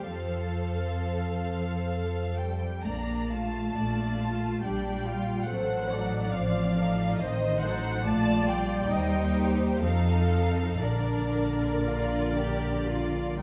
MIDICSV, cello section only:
0, 0, Header, 1, 2, 480
1, 0, Start_track
1, 0, Key_signature, -2, "major"
1, 0, Tempo, 921659
1, 43, Time_signature, 3, 2, 24, 8
1, 1962, Tempo, 857143
1, 4842, Tempo, 918836
1, 5322, Tempo, 983607
1, 5802, Tempo, 1029160
1, 7019, End_track
2, 0, Start_track
2, 0, Title_t, "Cello section"
2, 0, Program_c, 0, 48
2, 42, Note_on_c, 0, 53, 42
2, 1244, Note_off_c, 0, 53, 0
2, 1248, Note_on_c, 0, 55, 42
2, 1484, Note_off_c, 0, 55, 0
2, 1490, Note_on_c, 0, 58, 47
2, 1727, Note_off_c, 0, 58, 0
2, 1732, Note_on_c, 0, 57, 51
2, 2448, Note_on_c, 0, 55, 52
2, 2452, Note_off_c, 0, 57, 0
2, 2925, Note_off_c, 0, 55, 0
2, 2925, Note_on_c, 0, 54, 55
2, 3397, Note_off_c, 0, 54, 0
2, 3409, Note_on_c, 0, 53, 63
2, 3889, Note_off_c, 0, 53, 0
2, 3892, Note_on_c, 0, 51, 59
2, 4128, Note_off_c, 0, 51, 0
2, 4129, Note_on_c, 0, 54, 66
2, 4365, Note_off_c, 0, 54, 0
2, 4366, Note_on_c, 0, 57, 72
2, 4602, Note_off_c, 0, 57, 0
2, 4605, Note_on_c, 0, 55, 61
2, 5323, Note_on_c, 0, 53, 61
2, 5324, Note_off_c, 0, 55, 0
2, 5801, Note_on_c, 0, 50, 55
2, 5803, Note_off_c, 0, 53, 0
2, 7001, Note_on_c, 0, 55, 76
2, 7002, Note_off_c, 0, 50, 0
2, 7019, Note_off_c, 0, 55, 0
2, 7019, End_track
0, 0, End_of_file